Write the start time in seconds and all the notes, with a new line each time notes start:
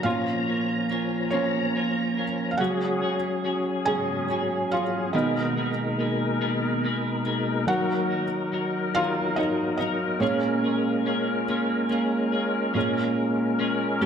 Already playing: A#5
0.03 A#2 F3 A#3 C#4 F4 A#4 F5
0.47 A#3 C#4 F4 A#4
0.90 A#3 C#4 F4 A#4
1.30 A#2 F3 A#3 C#4 F4 A#4 C#5
1.75 A#3 C#4 F4 A#4
2.17 A#3 C#4 F4 A#4
2.51 F5
2.57 C#3 F#3 G#3 C#4 F#4 G#4 F#5
3.02 C#4 F#4 G#4
3.44 F#3 C#4 F#4 G#4
3.85 C#3 F#3 G#3 C#4 F#4 G#4 G#5
4.30 F#3 C#4 F#4 G#4
4.72 C#4 F4 F#4 G#4 F5
5.13 B2 D#3 G#3 A#3 B3 D#4 G#4 A#4 D#5
5.57 A#3 B3 D#4 G#4
5.99 A#3 B3 D#4 G#4
6.41 B2 D#3 A#3 B3 D#4 G#4
6.84 A#3 B3 D#4 G#4
7.26 A#3 B3 D#4 G#4
7.67 D#3 F#3 A#3 D#4 F#4 A#4 F#5
8.10 D#4 F#4 A#4
8.52 F#3 D#4 F#4 A#4
8.95 D#3 F#3 D#4 F4 F#4 A#4 F5
9.36 F#3 D#4 F#4 A#4 D#5
9.77 D#4 F#4 A#4 D#5
10.20 A#2 G#3 A#3 C#4 F4 G#4 A#4 C#5
10.64 C#4 F4 G#4
11.06 A#3 C#4 F4 G#4
11.48 A#3 C#4 F4 G#4
11.90 A#3 C#4 F4 G#4
12.32 C#4 F4 G#4
12.74 A#2 G#3 A#3 C#4 F4 G#4 A#4
13.59 A#3 C#4 F4 G#4
14.01 A2 E3 G3 C#4 G4 A4